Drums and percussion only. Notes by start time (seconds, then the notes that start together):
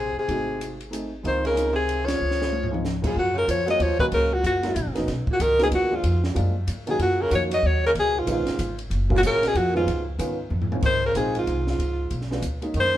0.29 kick, ride
0.61 hi-hat pedal, ride
0.81 ride
0.93 hi-hat pedal, ride
1.25 kick, ride
1.45 ride
1.57 hi-hat pedal, ride
1.89 ride
2.08 snare, ride
2.31 snare
2.42 snare
2.53 high tom
2.63 floor tom
2.74 mid tom
2.85 snare, hi-hat pedal
3.04 kick, crash
3.16 kick
3.48 kick, hi-hat pedal, ride
3.68 ride
3.80 kick, ride
3.99 kick
4.12 kick, ride
4.44 kick, hi-hat pedal, ride
4.63 snare, ride
4.76 kick, hi-hat pedal, ride
4.95 snare, ride
5.08 kick, snare, ride
5.27 kick
5.40 kick, hi-hat pedal, ride
5.59 snare, ride
5.72 kick, ride
6.04 kick, ride
6.24 snare
6.36 kick, ride
6.67 kick, hi-hat pedal, ride
6.87 ride
6.99 kick, ride
7.31 kick, hi-hat pedal, ride
7.51 ride
7.63 kick
7.95 kick, ride
8.27 kick, hi-hat pedal, ride
8.46 snare, ride
8.59 kick, hi-hat pedal, ride
8.79 ride
8.91 kick, ride
9.10 kick
9.23 kick, hi-hat pedal, ride
9.43 snare, ride
9.55 kick, ride
9.87 kick, ride
10.19 kick, hi-hat pedal, ride
10.51 floor tom
10.62 floor tom
10.72 floor tom
10.82 kick, crash
11.15 kick, hi-hat pedal, ride
11.35 ride
11.47 kick, ride
11.67 snare
11.79 kick, ride
12.11 kick, ride
12.21 snare
12.31 snare
12.42 kick, hi-hat pedal, ride
12.62 ride
12.74 kick, ride
12.84 snare